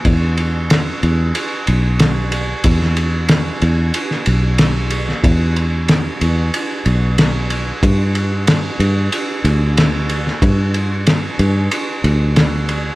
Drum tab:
RD |x-x-x-x-x-x-x-x-|x-x-x-x-x-x-x-x-|x-x-x-x-x-x-x-x-|x-x-x-x-x-x-x-x-|
SD |----o-------o---|-o--o----o--o--o|----o-------o---|----o-------o--o|
BD |o---------------|o---------------|o---------------|o---------------|

RD |x-x-x-x-x-x-x-x-|
SD |----o-------o---|
BD |o---------------|